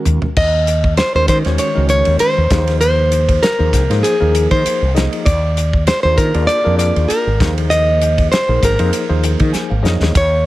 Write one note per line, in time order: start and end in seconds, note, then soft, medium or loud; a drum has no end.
0.00 0.28 D#3 medium
0.00 0.28 G#3 medium
0.00 0.28 C#4 medium
0.00 0.28 F#4 medium
0.00 0.28 A#4 medium
0.05 0.20 D#2 medium
0.05 floor tom medium
0.05 hi-hat pedal medium
0.22 muted fretless electric bass stroke soft
0.22 floor tom medium
0.37 0.99 D#2 medium
0.37 0.97 D#5 loud
0.37 kick loud
0.37 crash medium
0.67 hi-hat pedal medium
0.67 ride medium
0.84 kick medium
0.97 1.15 C5 medium
0.97 snare loud
0.97 hi-hat pedal medium
0.97 ride medium
1.15 1.26 D#2 medium
1.15 1.40 D#3 medium
1.15 1.40 G#3 medium
1.15 1.40 C#4 medium
1.15 1.41 F#4 medium
1.15 1.40 A#4 medium
1.15 1.28 C5 medium
1.28 1.42 D#3 medium
1.28 1.37 C5 medium
1.28 kick medium
1.28 snare soft
1.28 hi-hat pedal medium
1.28 ride medium
1.45 1.57 D#2 medium
1.45 1.70 D#3 medium
1.45 1.71 G#3 medium
1.45 1.71 C#4 medium
1.45 1.71 F#4 medium
1.45 1.71 C#5 medium
1.45 snare soft
1.45 ride medium
1.58 1.89 C#5 loud
1.58 hi-hat pedal medium
1.58 ride medium
1.75 2.01 C#2 medium
1.75 2.38 D#3 medium
1.75 2.38 G#3 medium
1.75 2.38 C#4 medium
1.75 2.39 F#4 medium
1.75 2.39 A#4 medium
1.89 2.20 C#5 medium
1.89 hi-hat pedal medium
1.89 ride medium
2.05 2.18 D#2 medium
2.05 ride medium
2.19 2.79 C5 medium
2.19 muted fretless electric bass stroke soft
2.19 hi-hat pedal medium
2.19 ride medium
2.38 2.49 D#2 medium
2.50 3.38 D#2 medium
2.50 3.40 F3 medium
2.50 3.40 A#3 medium
2.50 3.40 D#4 medium
2.50 3.40 G#4 medium
2.50 3.40 C5 medium
2.50 kick medium
2.50 snare loud
2.50 hi-hat pedal medium
2.50 ride medium
2.67 snare soft
2.67 ride medium
2.81 3.44 C5 medium
2.81 hi-hat pedal medium
2.81 ride medium
3.12 hi-hat pedal medium
3.12 ride medium
3.29 kick medium
3.29 ride medium
3.43 4.00 A#4 medium
3.43 snare loud
3.43 hi-hat pedal medium
3.43 ride medium
3.59 3.71 D#2 medium
3.59 3.84 F3 medium
3.59 3.84 A#3 medium
3.59 3.84 D#4 medium
3.59 3.84 G#4 medium
3.59 3.84 C5 medium
3.73 3.87 C2 medium
3.73 kick medium
3.73 snare soft
3.73 hi-hat pedal medium
3.73 ride medium
3.90 4.01 G#2 medium
3.90 4.15 F3 medium
3.90 4.15 A#3 medium
3.90 4.15 D#4 medium
3.90 4.15 G#4 medium
3.90 4.15 C5 medium
3.90 snare soft
3.90 ride medium
4.03 4.48 G#4 medium
4.03 hi-hat pedal medium
4.03 ride medium
4.20 4.46 D#2 medium
4.20 4.83 F3 medium
4.20 4.83 A#3 medium
4.20 4.84 D#4 medium
4.20 4.84 G#4 medium
4.20 4.84 A#4 medium
4.35 hi-hat pedal medium
4.35 ride medium
4.51 4.62 D#3 medium
4.51 4.93 C5 medium
4.51 kick medium
4.51 ride medium
4.66 muted fretless electric bass stroke soft
4.66 hi-hat pedal medium
4.66 ride medium
4.82 5.06 C2 medium
4.95 5.26 F3 medium
4.95 5.26 A#3 medium
4.95 5.26 D#4 medium
4.95 5.26 G#4 medium
4.95 5.26 D#5 medium
4.95 snare loud
4.95 hi-hat pedal medium
4.95 ride medium
5.13 ride medium
5.25 5.89 D#2 loud
5.25 5.87 D5 medium
5.25 kick loud
5.25 hi-hat pedal medium
5.25 ride medium
5.57 hi-hat pedal medium
5.57 ride medium
5.73 kick medium
5.87 6.02 C5 medium
5.87 snare loud
5.87 hi-hat pedal medium
5.87 ride medium
6.03 6.15 D#2 medium
6.03 6.29 A#3 medium
6.03 6.29 D4 medium
6.03 6.29 F4 medium
6.03 6.29 G#4 medium
6.03 6.18 C5 medium
6.03 6.29 C5 medium
6.17 6.31 D#3 medium
6.17 6.49 A#4 medium
6.17 kick medium
6.17 hi-hat pedal medium
6.17 ride medium
6.34 6.46 D#2 medium
6.34 6.59 A#3 medium
6.34 6.59 D4 medium
6.34 6.59 F4 medium
6.34 6.59 G#4 medium
6.34 6.59 D5 medium
6.34 ride medium
6.47 6.77 D5 loud
6.47 hi-hat pedal medium
6.47 ride medium
6.64 6.90 F2 medium
6.64 7.28 A#3 medium
6.64 7.28 D4 medium
6.64 7.28 F4 medium
6.64 7.28 G#4 medium
6.64 7.28 A#4 medium
6.79 7.10 D5 medium
6.79 hi-hat pedal medium
6.79 ride medium
6.96 7.07 D#2 medium
6.96 ride medium
7.08 7.53 A#4 medium
7.08 muted fretless electric bass stroke soft
7.08 hi-hat pedal medium
7.08 ride medium
7.27 7.38 G#1 medium
7.40 8.27 D#2 loud
7.40 8.29 F3 medium
7.40 8.29 A#3 medium
7.40 8.29 D#4 medium
7.40 8.29 G#4 medium
7.40 8.29 C5 medium
7.40 kick loud
7.40 snare loud
7.40 hi-hat pedal medium
7.40 ride medium
7.58 ride medium
7.70 8.31 D#5 loud
7.70 hi-hat pedal medium
7.70 ride medium
8.01 hi-hat pedal medium
8.01 ride medium
8.18 kick medium
8.18 ride medium
8.32 8.63 C5 medium
8.32 snare loud
8.32 hi-hat pedal medium
8.32 ride medium
8.48 8.60 A#1 medium
8.48 8.73 F3 medium
8.48 8.73 A#3 medium
8.48 8.74 D#4 medium
8.48 8.74 G#4 medium
8.48 8.74 A#4 medium
8.62 8.76 G#1 medium
8.62 9.82 A#4 medium
8.62 kick medium
8.62 snare soft
8.62 hi-hat pedal medium
8.62 ride medium
8.79 8.90 F2 medium
8.79 9.04 F3 medium
8.79 9.04 A#3 medium
8.79 9.04 D#4 medium
8.79 9.04 G#4 medium
8.79 9.04 C5 medium
8.79 ride medium
8.93 hi-hat pedal medium
8.93 ride medium
9.09 9.34 D#2 medium
9.09 9.73 F3 medium
9.09 9.73 A#3 medium
9.09 9.73 D#4 medium
9.09 9.73 G#4 medium
9.09 9.73 C5 medium
9.23 hi-hat pedal medium
9.23 ride medium
9.40 9.51 D#3 medium
9.40 kick medium
9.40 ride medium
9.53 9.69 G#5 medium
9.53 muted fretless electric bass stroke soft
9.53 snare medium
9.53 hi-hat pedal medium
9.70 9.82 G#1 medium
9.70 9.83 F5 medium
9.83 9.99 F2 medium
9.83 10.15 F3 medium
9.83 10.14 A#3 medium
9.83 10.15 D#4 medium
9.83 10.15 G#4 medium
9.83 10.12 C#5 medium
9.83 10.15 D#5 loud
9.83 snare medium
9.83 hi-hat pedal medium
10.01 10.13 D#2 medium
10.01 snare medium
10.15 10.46 D#2 medium
10.15 10.46 C#5 medium
10.15 kick loud
10.15 hi-hat pedal medium
10.15 ride medium